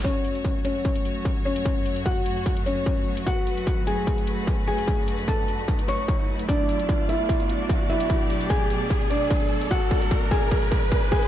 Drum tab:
HH |x-xxx-x-xxx-x--x|x-xxx-x-xxx-x--x|x-xxx-x-xxx-x--x|x-xxx-x-xxx-x--x|
BD |o---o---o---o---|o---o---o---o---|o---o---o---o---|o---o---o---o---|

HH |x-xxx-x-xxx-x--x|x-xxx-x-xxx-x--x|x-xxx-x-xxx-x--x|
BD |o---o---o---o---|o---o---o---o---|o-o-o-o-o-o-o-o-|